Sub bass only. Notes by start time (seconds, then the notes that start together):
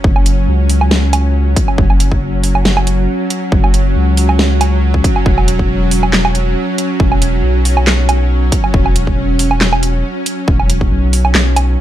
0.04 F#1
0.48 C#2
1.78 F#1
3.52 F#1
3.96 C#2
5.26 E1
7.00 E1
7.43 B1
8.74 E1
10.48 E1
10.91 B1
11.35 B1